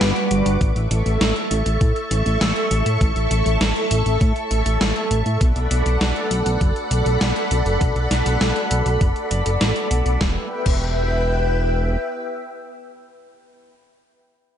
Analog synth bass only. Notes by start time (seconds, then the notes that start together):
0.01 G1
0.31 G1
0.46 G1
0.61 A1
0.76 A1
0.91 A1
1.06 A1
1.21 A1
1.51 A1
1.66 A1
1.81 A2
2.11 A1
2.26 A1
2.41 A1
2.71 A1
2.86 A2
3.01 A1
3.16 A1
3.31 A1
3.46 A1
3.61 A1
3.91 A1
4.06 A1
4.21 A2
4.51 A1
4.66 A1
4.81 A1
5.11 A1
5.26 A2
5.41 B1
5.56 B1
5.71 B1
5.86 B1
6.01 B1
6.31 B1
6.46 B1
6.61 F#1
6.91 B1
7.06 B1
7.21 B1
7.51 B1
7.66 F#1
7.81 B1
7.96 B1
8.11 B1
8.26 B1
8.41 B1
8.71 B1
8.86 B1
9.01 F#1
9.31 F#1
9.46 F#1
9.61 A1
9.91 B1
10.06 B1
10.21 E1
10.66 E1